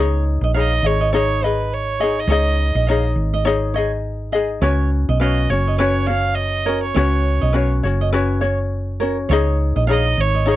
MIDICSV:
0, 0, Header, 1, 5, 480
1, 0, Start_track
1, 0, Tempo, 583658
1, 1882, Time_signature, 4, 2, 24, 8
1, 8686, End_track
2, 0, Start_track
2, 0, Title_t, "Fiddle"
2, 0, Program_c, 0, 110
2, 485, Note_on_c, 0, 75, 99
2, 709, Note_on_c, 0, 73, 97
2, 721, Note_off_c, 0, 75, 0
2, 934, Note_off_c, 0, 73, 0
2, 939, Note_on_c, 0, 73, 95
2, 1184, Note_on_c, 0, 71, 85
2, 1197, Note_off_c, 0, 73, 0
2, 1429, Note_on_c, 0, 73, 91
2, 1441, Note_off_c, 0, 71, 0
2, 1807, Note_on_c, 0, 75, 101
2, 1819, Note_off_c, 0, 73, 0
2, 2516, Note_off_c, 0, 75, 0
2, 4282, Note_on_c, 0, 75, 90
2, 4526, Note_on_c, 0, 73, 88
2, 4539, Note_off_c, 0, 75, 0
2, 4755, Note_off_c, 0, 73, 0
2, 4760, Note_on_c, 0, 73, 93
2, 4994, Note_on_c, 0, 77, 102
2, 5006, Note_off_c, 0, 73, 0
2, 5223, Note_on_c, 0, 75, 99
2, 5235, Note_off_c, 0, 77, 0
2, 5610, Note_off_c, 0, 75, 0
2, 5614, Note_on_c, 0, 73, 88
2, 6306, Note_off_c, 0, 73, 0
2, 8146, Note_on_c, 0, 75, 104
2, 8394, Note_on_c, 0, 73, 105
2, 8406, Note_off_c, 0, 75, 0
2, 8618, Note_off_c, 0, 73, 0
2, 8637, Note_on_c, 0, 73, 98
2, 8686, Note_off_c, 0, 73, 0
2, 8686, End_track
3, 0, Start_track
3, 0, Title_t, "Nylon-string guitar"
3, 0, Program_c, 1, 24
3, 0, Note_on_c, 1, 73, 92
3, 195, Note_off_c, 1, 73, 0
3, 359, Note_on_c, 1, 75, 72
3, 444, Note_off_c, 1, 75, 0
3, 447, Note_on_c, 1, 77, 87
3, 582, Note_off_c, 1, 77, 0
3, 829, Note_on_c, 1, 75, 69
3, 919, Note_off_c, 1, 75, 0
3, 929, Note_on_c, 1, 73, 79
3, 1154, Note_off_c, 1, 73, 0
3, 1163, Note_on_c, 1, 73, 74
3, 1300, Note_off_c, 1, 73, 0
3, 1645, Note_on_c, 1, 68, 78
3, 1781, Note_off_c, 1, 68, 0
3, 1880, Note_on_c, 1, 73, 97
3, 2109, Note_off_c, 1, 73, 0
3, 2266, Note_on_c, 1, 75, 68
3, 2355, Note_off_c, 1, 75, 0
3, 2359, Note_on_c, 1, 77, 85
3, 2497, Note_off_c, 1, 77, 0
3, 2744, Note_on_c, 1, 75, 73
3, 2838, Note_off_c, 1, 75, 0
3, 2838, Note_on_c, 1, 73, 86
3, 3068, Note_off_c, 1, 73, 0
3, 3076, Note_on_c, 1, 73, 80
3, 3215, Note_off_c, 1, 73, 0
3, 3555, Note_on_c, 1, 68, 71
3, 3695, Note_off_c, 1, 68, 0
3, 3797, Note_on_c, 1, 73, 105
3, 4027, Note_off_c, 1, 73, 0
3, 4185, Note_on_c, 1, 75, 76
3, 4276, Note_off_c, 1, 75, 0
3, 4285, Note_on_c, 1, 77, 87
3, 4419, Note_off_c, 1, 77, 0
3, 4666, Note_on_c, 1, 75, 71
3, 4753, Note_off_c, 1, 75, 0
3, 4756, Note_on_c, 1, 73, 78
3, 4986, Note_off_c, 1, 73, 0
3, 4994, Note_on_c, 1, 73, 83
3, 5134, Note_off_c, 1, 73, 0
3, 5476, Note_on_c, 1, 70, 76
3, 5614, Note_off_c, 1, 70, 0
3, 5712, Note_on_c, 1, 73, 103
3, 5943, Note_off_c, 1, 73, 0
3, 6097, Note_on_c, 1, 75, 75
3, 6202, Note_off_c, 1, 75, 0
3, 6202, Note_on_c, 1, 77, 89
3, 6338, Note_off_c, 1, 77, 0
3, 6588, Note_on_c, 1, 75, 70
3, 6677, Note_off_c, 1, 75, 0
3, 6683, Note_on_c, 1, 73, 76
3, 6910, Note_off_c, 1, 73, 0
3, 6920, Note_on_c, 1, 73, 79
3, 7057, Note_off_c, 1, 73, 0
3, 7401, Note_on_c, 1, 70, 74
3, 7537, Note_off_c, 1, 70, 0
3, 7639, Note_on_c, 1, 73, 104
3, 7868, Note_off_c, 1, 73, 0
3, 8026, Note_on_c, 1, 75, 77
3, 8115, Note_off_c, 1, 75, 0
3, 8118, Note_on_c, 1, 77, 89
3, 8256, Note_off_c, 1, 77, 0
3, 8509, Note_on_c, 1, 75, 74
3, 8602, Note_off_c, 1, 75, 0
3, 8602, Note_on_c, 1, 73, 85
3, 8686, Note_off_c, 1, 73, 0
3, 8686, End_track
4, 0, Start_track
4, 0, Title_t, "Ukulele"
4, 0, Program_c, 2, 24
4, 0, Note_on_c, 2, 63, 87
4, 0, Note_on_c, 2, 68, 88
4, 0, Note_on_c, 2, 73, 86
4, 0, Note_on_c, 2, 75, 96
4, 448, Note_off_c, 2, 73, 0
4, 449, Note_off_c, 2, 63, 0
4, 451, Note_off_c, 2, 68, 0
4, 451, Note_on_c, 2, 73, 57
4, 455, Note_off_c, 2, 75, 0
4, 460, Note_on_c, 2, 63, 60
4, 465, Note_on_c, 2, 68, 63
4, 469, Note_on_c, 2, 75, 59
4, 683, Note_off_c, 2, 75, 0
4, 687, Note_off_c, 2, 73, 0
4, 692, Note_off_c, 2, 63, 0
4, 693, Note_on_c, 2, 75, 50
4, 694, Note_off_c, 2, 68, 0
4, 704, Note_on_c, 2, 68, 48
4, 715, Note_on_c, 2, 63, 44
4, 925, Note_off_c, 2, 63, 0
4, 926, Note_on_c, 2, 73, 79
4, 928, Note_off_c, 2, 75, 0
4, 932, Note_off_c, 2, 68, 0
4, 935, Note_on_c, 2, 63, 79
4, 941, Note_on_c, 2, 68, 76
4, 942, Note_on_c, 2, 75, 92
4, 1165, Note_off_c, 2, 73, 0
4, 1169, Note_off_c, 2, 63, 0
4, 1172, Note_off_c, 2, 68, 0
4, 1172, Note_off_c, 2, 75, 0
4, 1185, Note_on_c, 2, 75, 54
4, 1193, Note_on_c, 2, 68, 49
4, 1203, Note_on_c, 2, 63, 43
4, 1639, Note_off_c, 2, 75, 0
4, 1649, Note_on_c, 2, 75, 58
4, 1654, Note_off_c, 2, 68, 0
4, 1662, Note_off_c, 2, 63, 0
4, 1664, Note_on_c, 2, 68, 49
4, 1673, Note_on_c, 2, 63, 46
4, 1886, Note_off_c, 2, 63, 0
4, 1886, Note_off_c, 2, 75, 0
4, 1887, Note_off_c, 2, 68, 0
4, 1890, Note_on_c, 2, 73, 84
4, 1895, Note_on_c, 2, 63, 82
4, 1897, Note_on_c, 2, 68, 85
4, 1907, Note_on_c, 2, 75, 93
4, 2369, Note_off_c, 2, 63, 0
4, 2369, Note_off_c, 2, 68, 0
4, 2369, Note_off_c, 2, 73, 0
4, 2372, Note_on_c, 2, 73, 65
4, 2374, Note_off_c, 2, 75, 0
4, 2381, Note_on_c, 2, 63, 72
4, 2390, Note_on_c, 2, 68, 73
4, 2392, Note_on_c, 2, 75, 77
4, 2830, Note_off_c, 2, 63, 0
4, 2833, Note_off_c, 2, 73, 0
4, 2836, Note_on_c, 2, 73, 85
4, 2840, Note_on_c, 2, 63, 89
4, 2841, Note_off_c, 2, 68, 0
4, 2844, Note_off_c, 2, 75, 0
4, 2851, Note_on_c, 2, 68, 96
4, 2854, Note_on_c, 2, 75, 94
4, 3079, Note_off_c, 2, 73, 0
4, 3079, Note_off_c, 2, 75, 0
4, 3081, Note_off_c, 2, 63, 0
4, 3086, Note_off_c, 2, 68, 0
4, 3089, Note_on_c, 2, 75, 60
4, 3104, Note_on_c, 2, 68, 56
4, 3107, Note_on_c, 2, 63, 51
4, 3550, Note_off_c, 2, 75, 0
4, 3560, Note_on_c, 2, 75, 59
4, 3562, Note_off_c, 2, 68, 0
4, 3572, Note_on_c, 2, 68, 57
4, 3574, Note_off_c, 2, 63, 0
4, 3583, Note_on_c, 2, 63, 50
4, 3798, Note_off_c, 2, 63, 0
4, 3798, Note_on_c, 2, 71, 86
4, 3800, Note_off_c, 2, 75, 0
4, 3801, Note_on_c, 2, 61, 87
4, 3804, Note_off_c, 2, 68, 0
4, 3807, Note_on_c, 2, 66, 97
4, 3810, Note_on_c, 2, 73, 99
4, 4263, Note_off_c, 2, 71, 0
4, 4273, Note_on_c, 2, 71, 64
4, 4279, Note_off_c, 2, 66, 0
4, 4280, Note_off_c, 2, 61, 0
4, 4283, Note_on_c, 2, 61, 65
4, 4289, Note_on_c, 2, 66, 65
4, 4291, Note_off_c, 2, 73, 0
4, 4295, Note_on_c, 2, 73, 61
4, 4509, Note_off_c, 2, 73, 0
4, 4517, Note_off_c, 2, 71, 0
4, 4519, Note_on_c, 2, 73, 51
4, 4522, Note_off_c, 2, 61, 0
4, 4524, Note_off_c, 2, 66, 0
4, 4535, Note_on_c, 2, 66, 52
4, 4544, Note_on_c, 2, 61, 45
4, 4757, Note_off_c, 2, 61, 0
4, 4759, Note_on_c, 2, 71, 82
4, 4760, Note_off_c, 2, 73, 0
4, 4764, Note_off_c, 2, 66, 0
4, 4767, Note_on_c, 2, 61, 85
4, 4774, Note_on_c, 2, 66, 82
4, 4775, Note_on_c, 2, 73, 89
4, 4990, Note_off_c, 2, 73, 0
4, 4996, Note_off_c, 2, 71, 0
4, 5000, Note_on_c, 2, 73, 60
4, 5002, Note_off_c, 2, 66, 0
4, 5004, Note_off_c, 2, 61, 0
4, 5012, Note_on_c, 2, 66, 46
4, 5022, Note_on_c, 2, 61, 43
4, 5474, Note_off_c, 2, 73, 0
4, 5474, Note_on_c, 2, 73, 52
4, 5483, Note_off_c, 2, 66, 0
4, 5493, Note_on_c, 2, 66, 47
4, 5495, Note_off_c, 2, 61, 0
4, 5498, Note_on_c, 2, 61, 44
4, 5714, Note_off_c, 2, 61, 0
4, 5717, Note_off_c, 2, 73, 0
4, 5721, Note_off_c, 2, 66, 0
4, 5721, Note_on_c, 2, 71, 74
4, 5724, Note_on_c, 2, 61, 75
4, 5731, Note_on_c, 2, 66, 91
4, 5734, Note_on_c, 2, 73, 87
4, 6181, Note_off_c, 2, 71, 0
4, 6191, Note_on_c, 2, 71, 69
4, 6197, Note_off_c, 2, 61, 0
4, 6199, Note_off_c, 2, 66, 0
4, 6201, Note_on_c, 2, 61, 64
4, 6209, Note_on_c, 2, 66, 78
4, 6210, Note_off_c, 2, 73, 0
4, 6214, Note_on_c, 2, 73, 73
4, 6433, Note_off_c, 2, 73, 0
4, 6435, Note_off_c, 2, 71, 0
4, 6440, Note_off_c, 2, 61, 0
4, 6442, Note_on_c, 2, 73, 55
4, 6444, Note_off_c, 2, 66, 0
4, 6457, Note_on_c, 2, 66, 55
4, 6468, Note_on_c, 2, 61, 48
4, 6680, Note_off_c, 2, 61, 0
4, 6681, Note_off_c, 2, 73, 0
4, 6682, Note_on_c, 2, 71, 92
4, 6685, Note_off_c, 2, 66, 0
4, 6690, Note_on_c, 2, 61, 88
4, 6695, Note_on_c, 2, 66, 94
4, 6698, Note_on_c, 2, 73, 91
4, 6907, Note_off_c, 2, 73, 0
4, 6917, Note_on_c, 2, 73, 56
4, 6918, Note_off_c, 2, 66, 0
4, 6921, Note_off_c, 2, 71, 0
4, 6925, Note_off_c, 2, 61, 0
4, 6928, Note_on_c, 2, 66, 53
4, 6938, Note_on_c, 2, 61, 45
4, 7401, Note_off_c, 2, 73, 0
4, 7401, Note_on_c, 2, 73, 60
4, 7402, Note_off_c, 2, 66, 0
4, 7412, Note_on_c, 2, 66, 52
4, 7419, Note_off_c, 2, 61, 0
4, 7422, Note_on_c, 2, 61, 50
4, 7641, Note_off_c, 2, 73, 0
4, 7646, Note_off_c, 2, 66, 0
4, 7651, Note_off_c, 2, 61, 0
4, 7655, Note_on_c, 2, 73, 94
4, 7662, Note_on_c, 2, 63, 101
4, 7666, Note_on_c, 2, 68, 94
4, 7669, Note_on_c, 2, 75, 104
4, 8118, Note_off_c, 2, 73, 0
4, 8128, Note_on_c, 2, 73, 65
4, 8132, Note_off_c, 2, 63, 0
4, 8135, Note_on_c, 2, 63, 66
4, 8137, Note_off_c, 2, 68, 0
4, 8140, Note_on_c, 2, 68, 63
4, 8144, Note_off_c, 2, 75, 0
4, 8147, Note_on_c, 2, 75, 72
4, 8589, Note_off_c, 2, 73, 0
4, 8599, Note_on_c, 2, 73, 78
4, 8604, Note_off_c, 2, 63, 0
4, 8608, Note_on_c, 2, 63, 82
4, 8613, Note_off_c, 2, 68, 0
4, 8616, Note_off_c, 2, 75, 0
4, 8616, Note_on_c, 2, 68, 86
4, 8619, Note_on_c, 2, 75, 85
4, 8686, Note_off_c, 2, 63, 0
4, 8686, Note_off_c, 2, 68, 0
4, 8686, Note_off_c, 2, 73, 0
4, 8686, Note_off_c, 2, 75, 0
4, 8686, End_track
5, 0, Start_track
5, 0, Title_t, "Fingered electric bass"
5, 0, Program_c, 3, 33
5, 0, Note_on_c, 3, 37, 94
5, 315, Note_off_c, 3, 37, 0
5, 339, Note_on_c, 3, 34, 83
5, 652, Note_off_c, 3, 34, 0
5, 678, Note_on_c, 3, 32, 83
5, 1847, Note_off_c, 3, 32, 0
5, 1870, Note_on_c, 3, 37, 109
5, 2229, Note_off_c, 3, 37, 0
5, 2261, Note_on_c, 3, 34, 88
5, 2572, Note_off_c, 3, 34, 0
5, 2595, Note_on_c, 3, 32, 89
5, 3764, Note_off_c, 3, 32, 0
5, 3795, Note_on_c, 3, 37, 102
5, 4151, Note_off_c, 3, 37, 0
5, 4184, Note_on_c, 3, 35, 93
5, 4493, Note_off_c, 3, 35, 0
5, 4519, Note_on_c, 3, 30, 88
5, 5686, Note_off_c, 3, 30, 0
5, 5725, Note_on_c, 3, 37, 99
5, 6076, Note_off_c, 3, 37, 0
5, 6108, Note_on_c, 3, 35, 82
5, 6415, Note_off_c, 3, 35, 0
5, 6443, Note_on_c, 3, 30, 83
5, 7609, Note_off_c, 3, 30, 0
5, 7644, Note_on_c, 3, 37, 94
5, 7996, Note_off_c, 3, 37, 0
5, 8028, Note_on_c, 3, 34, 87
5, 8336, Note_off_c, 3, 34, 0
5, 8368, Note_on_c, 3, 32, 88
5, 8686, Note_off_c, 3, 32, 0
5, 8686, End_track
0, 0, End_of_file